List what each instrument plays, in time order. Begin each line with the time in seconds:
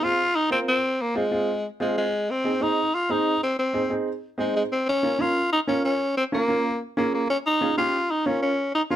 0.02 upright piano C4 F4 G#4, tenor saxophone F4
0.36 tenor saxophone D#4
0.50 upright piano C4 F4 A#4, tenor saxophone C4
0.68 tenor saxophone C4
1.01 tenor saxophone A#3
1.15 tenor saxophone G#3, upright piano C4 F4 G#4
1.31 upright piano C4 F4 G#4
1.80 tenor saxophone G#3, upright piano C4 F4 G#4
1.97 tenor saxophone G#3
2.31 tenor saxophone C4
2.44 upright piano C4 D#4 G#4
2.60 upright piano C4 D#4 G#4, tenor saxophone D#4
2.94 tenor saxophone F4
3.09 upright piano C4 D#4 G#4, tenor saxophone D#4
3.43 tenor saxophone C4
3.59 tenor saxophone C4
3.73 upright piano C4 D#4 G#4
3.89 upright piano C4 D#4 G#4
4.38 tenor saxophone G#3, upright piano C4 D#4 G#4
4.56 tenor saxophone G#3
4.72 tenor saxophone C4
4.89 tenor saxophone C#4
5.03 upright piano C#4 F4 A#4
5.19 upright piano C#4 F4 A#4, tenor saxophone F4
5.53 tenor saxophone D#4
5.67 upright piano C#4 F4 A#4, tenor saxophone C#4
5.84 tenor saxophone C#4
6.17 tenor saxophone C4
6.32 tenor saxophone A#3, upright piano C#4 F4 A#4
6.48 upright piano C#4 F4 A#4
6.97 tenor saxophone A#3, upright piano C#4 F4 G#4
7.14 tenor saxophone A#3
7.30 tenor saxophone C#4
7.46 tenor saxophone D#4
7.61 upright piano C#4 F4 G#4
7.77 upright piano C#4 F4 G4, tenor saxophone F4
8.11 tenor saxophone D#4
8.26 upright piano C#4 F4 A#4, tenor saxophone C#4
8.42 tenor saxophone C#4
8.75 tenor saxophone D#4
8.90 upright piano C#4 F4 A#4, tenor saxophone F4